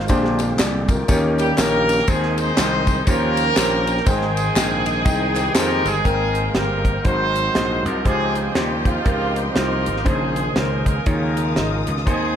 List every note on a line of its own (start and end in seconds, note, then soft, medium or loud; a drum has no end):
0.00 1.06 G#3 medium
0.00 0.37 F5 medium
0.08 0.51 A#1 loud
0.08 0.85 A#2 medium
0.08 1.07 D3 medium
0.08 1.07 C4 medium
0.08 0.46 D4 medium
0.08 2.05 G4 medium
0.08 0.39 G4 medium
0.08 0.39 G#4 medium
0.08 0.39 C5 loud
0.08 kick loud
0.08 ride medium
0.08 tambourine medium
0.25 snare soft
0.39 0.58 C5 medium
0.39 0.58 F5 medium
0.39 ride medium
0.39 tambourine medium
0.59 1.01 C2 medium
0.59 0.88 G#4 medium
0.59 0.88 D5 medium
0.59 snare loud
0.59 clap medium
0.59 ride medium
0.59 tambourine medium
0.88 1.37 F4 medium
0.88 1.08 A#4 medium
0.88 kick medium
0.88 ride medium
0.88 tambourine medium
1.08 1.51 D#2 loud
1.08 1.84 D#3 medium
1.08 3.06 D#3 medium
1.08 2.07 A#3 medium
1.08 1.45 C#4 medium
1.08 2.07 C#4 medium
1.08 1.45 D#4 medium
1.08 1.46 G4 medium
1.08 1.46 A#4 medium
1.08 kick loud
1.08 ride medium
1.08 tambourine medium
1.38 1.57 G3 medium
1.38 1.57 G4 medium
1.38 ride medium
1.38 tambourine medium
1.57 2.00 A#1 medium
1.57 2.08 A#3 medium
1.57 1.94 C#4 medium
1.57 2.05 C#4 medium
1.57 1.95 D#4 medium
1.57 1.95 G4 medium
1.57 2.05 G4 medium
1.57 1.95 A#4 medium
1.57 2.08 A#4 loud
1.57 snare loud
1.57 clap medium
1.57 ride medium
1.57 tambourine loud
1.89 ride medium
1.89 tambourine medium
1.99 snare soft
2.07 2.50 D#2 loud
2.07 2.83 D#3 medium
2.07 3.06 G#3 medium
2.07 2.37 G#3 loud
2.07 2.44 C4 medium
2.07 2.39 C4 medium
2.07 2.37 D#4 medium
2.07 2.45 D#4 medium
2.07 2.45 G#4 medium
2.07 3.06 G#4 medium
2.07 2.37 G#4 loud
2.07 6.02 C5 medium
2.07 2.45 C5 medium
2.07 kick medium
2.07 ride medium
2.07 tambourine medium
2.23 snare soft
2.38 3.08 C4 loud
2.38 3.03 D#4 medium
2.38 3.03 G#4 medium
2.38 3.08 C5 loud
2.38 ride medium
2.38 tambourine medium
2.57 3.00 C2 loud
2.57 2.94 C4 medium
2.57 2.94 D#4 medium
2.57 2.94 G#4 medium
2.57 2.94 C5 medium
2.57 snare loud
2.57 clap medium
2.57 ride medium
2.57 tambourine medium
2.87 kick medium
2.87 ride medium
2.87 tambourine soft
3.07 3.50 D#2 loud
3.07 3.83 D#3 medium
3.07 4.05 F3 medium
3.07 4.03 A#3 medium
3.07 3.44 C#4 medium
3.07 4.05 C#4 medium
3.07 4.02 C#4 medium
3.07 3.44 F4 medium
3.07 3.44 G4 medium
3.07 4.03 G4 medium
3.07 4.03 A#4 loud
3.07 3.44 C5 medium
3.07 6.02 G5 medium
3.07 kick loud
3.07 ride medium
3.07 tambourine medium
3.37 ride medium
3.37 tambourine medium
3.56 3.99 A#1 medium
3.56 3.93 C#4 medium
3.56 3.93 F4 medium
3.56 3.93 G4 medium
3.56 3.93 C5 medium
3.56 snare loud
3.56 clap loud
3.56 ride medium
3.56 tambourine loud
3.87 ride medium
3.87 tambourine medium
3.97 snare soft
4.06 4.49 G#1 loud
4.06 4.82 G#2 medium
4.06 6.04 D#3 medium
4.06 6.04 G#3 medium
4.06 5.57 G#3 medium
4.06 5.52 C4 medium
4.06 4.43 D#4 medium
4.06 5.52 D#4 medium
4.06 4.43 G#4 medium
4.06 5.57 G#4 medium
4.06 4.43 C5 medium
4.06 4.43 G5 medium
4.06 kick medium
4.06 ride medium
4.06 tambourine medium
4.22 snare soft
4.37 ride medium
4.37 tambourine medium
4.55 5.06 A#1 loud
4.55 4.93 D#4 medium
4.55 4.93 G#4 medium
4.55 4.93 D#5 medium
4.55 4.93 G5 medium
4.55 snare loud
4.55 clap loud
4.55 ride medium
4.55 tambourine medium
4.86 ride medium
4.86 tambourine soft
5.05 5.48 C2 loud
5.05 5.42 D#4 medium
5.05 5.43 G#4 medium
5.05 5.43 D#5 medium
5.05 5.43 G5 medium
5.05 kick loud
5.05 ride medium
5.05 tambourine medium
5.36 5.56 G3 medium
5.36 5.56 G4 medium
5.36 clap medium
5.36 ride medium
5.36 tambourine medium
5.55 5.81 F2 medium
5.55 5.87 A#3 medium
5.55 5.92 D#4 medium
5.55 5.92 G4 medium
5.55 5.92 G#4 medium
5.55 5.87 A#4 loud
5.55 5.93 C5 loud
5.55 snare loud
5.55 clap medium
5.55 ride medium
5.55 tambourine medium
5.85 6.02 G1 medium
5.85 6.56 G#3 medium
5.85 6.82 C4 medium
5.85 6.54 D#4 medium
5.85 6.56 G#4 loud
5.85 ride medium
5.85 tambourine medium
6.04 6.48 G#1 medium
6.04 6.81 G#2 medium
6.04 7.05 G#3 medium
6.04 7.05 A#3 medium
6.04 6.42 C4 medium
6.04 6.42 G#4 medium
6.04 6.42 A#4 medium
6.04 8.04 A#4 medium
6.04 7.04 C5 medium
6.04 11.03 C5 medium
6.04 6.42 G5 medium
6.04 7.04 G5 medium
6.04 7.04 A#5 medium
6.04 kick medium
6.04 closed hi-hat medium
6.35 closed hi-hat medium
6.54 6.98 G1 medium
6.54 6.92 G#3 medium
6.54 7.06 A#3 medium
6.54 6.92 C4 medium
6.54 7.02 D#4 medium
6.54 6.92 G4 medium
6.54 7.02 G4 medium
6.54 7.06 A#4 medium
6.54 6.92 C5 medium
6.54 snare medium
6.54 closed hi-hat medium
6.85 kick medium
6.85 closed hi-hat medium
7.04 7.48 G#1 medium
7.04 7.81 G#2 medium
7.04 8.05 F#3 medium
7.04 7.82 C4 medium
7.04 7.42 D#4 medium
7.04 10.03 D#4 medium
7.04 8.02 D#4 medium
7.04 7.42 F#4 medium
7.04 8.02 F#4 medium
7.04 7.42 G#4 medium
7.04 7.42 C5 medium
7.04 7.82 C5 loud
7.04 11.01 D#5 medium
7.04 8.04 F#5 medium
7.04 11.01 C6 medium
7.04 kick loud
7.04 closed hi-hat medium
7.36 closed hi-hat medium
7.54 7.81 A#1 medium
7.54 7.92 D#4 medium
7.54 7.92 F#4 medium
7.54 7.92 G#4 medium
7.54 7.92 D#5 medium
7.54 snare loud
7.54 closed hi-hat medium
7.85 8.02 C2 medium
7.85 8.04 A#3 medium
7.85 8.04 A#4 medium
7.85 closed hi-hat medium
8.05 8.48 C#2 medium
8.05 8.82 C#3 medium
8.05 10.04 F3 medium
8.05 8.35 G#3 medium
8.05 8.86 C4 medium
8.05 8.42 D#4 medium
8.05 8.43 F4 medium
8.05 8.86 F4 medium
8.05 8.43 G4 medium
8.05 10.04 G4 medium
8.05 8.35 G#4 medium
8.05 8.43 C5 medium
8.05 10.04 F5 medium
8.05 10.04 G5 medium
8.05 kick medium
8.05 closed hi-hat medium
8.35 8.55 G#3 medium
8.35 8.55 G#4 medium
8.35 closed hi-hat medium
8.55 8.98 D#2 medium
8.55 8.86 G3 medium
8.55 8.92 D#4 medium
8.55 8.93 F4 medium
8.55 8.93 G4 medium
8.55 8.86 G4 medium
8.55 8.93 C5 medium
8.55 snare medium
8.55 closed hi-hat medium
8.85 9.37 F3 medium
8.85 9.83 G#3 medium
8.85 9.83 C4 medium
8.85 9.37 F4 medium
8.85 kick medium
8.85 closed hi-hat medium
9.04 9.48 C#2 loud
9.04 9.42 D#4 medium
9.04 9.42 F4 medium
9.04 9.42 G4 medium
9.04 9.43 A#4 medium
9.04 kick loud
9.04 closed hi-hat medium
9.36 9.56 G3 medium
9.36 9.56 G4 medium
9.36 closed hi-hat medium
9.54 9.88 C2 medium
9.54 10.03 A#3 medium
9.54 9.92 D#4 medium
9.54 10.03 D#4 medium
9.54 9.92 F4 medium
9.54 10.03 F4 medium
9.54 9.93 G4 medium
9.54 10.03 A#4 medium
9.54 9.92 C5 medium
9.54 snare medium
9.54 closed hi-hat medium
9.86 10.03 G#1 medium
9.86 closed hi-hat medium
9.97 snare soft
10.04 10.49 A#1 medium
10.04 10.82 A#2 medium
10.04 10.42 C#3 medium
10.04 12.04 C#3 medium
10.04 12.36 D#3 medium
10.04 10.57 G#3 medium
10.04 11.03 C4 medium
10.04 11.03 C#4 medium
10.04 10.43 D#4 medium
10.04 10.43 G#4 medium
10.04 11.06 G#4 medium
10.04 10.57 G#4 medium
10.04 10.43 C5 medium
10.04 12.05 G#5 medium
10.04 kick medium
10.04 closed hi-hat medium
10.36 closed hi-hat medium
10.55 10.99 C#2 medium
10.55 10.93 C#3 medium
10.55 10.86 A#3 medium
10.55 10.93 D#4 medium
10.55 10.93 G#4 medium
10.55 10.86 A#4 medium
10.55 10.93 C5 medium
10.55 snare medium
10.55 closed hi-hat medium
10.86 11.05 A#3 medium
10.86 11.05 A#4 medium
10.86 kick medium
10.86 closed hi-hat medium
11.06 11.59 D#2 medium
11.06 11.83 D#3 medium
11.06 12.36 G#3 medium
11.06 11.80 A#3 medium
11.06 11.91 C#4 medium
11.06 11.43 D#4 medium
11.06 11.44 F4 medium
11.06 11.91 F4 medium
11.06 12.06 F4 medium
11.06 11.44 G#4 medium
11.06 11.80 A#4 medium
11.06 11.44 C#5 medium
11.06 12.06 F5 medium
11.06 12.36 D#6 medium
11.06 kick loud
11.06 closed hi-hat medium
11.37 closed hi-hat medium
11.56 11.83 G#1 medium
11.56 11.94 D#4 medium
11.56 11.94 F4 medium
11.56 11.94 G#4 medium
11.56 11.94 D#5 medium
11.56 snare medium
11.56 closed hi-hat medium
11.87 12.04 C#2 medium
11.87 closed hi-hat medium
11.97 snare soft
12.06 12.36 D#2 medium
12.06 12.36 D#3 medium
12.06 12.36 G#3 medium
12.06 12.36 C4 medium
12.06 12.36 D#4 medium
12.06 12.36 G#4 medium
12.06 12.36 C5 loud
12.06 12.36 D#5 medium
12.06 12.36 G#5 medium
12.06 12.36 C6 medium
12.06 kick medium
12.06 closed hi-hat medium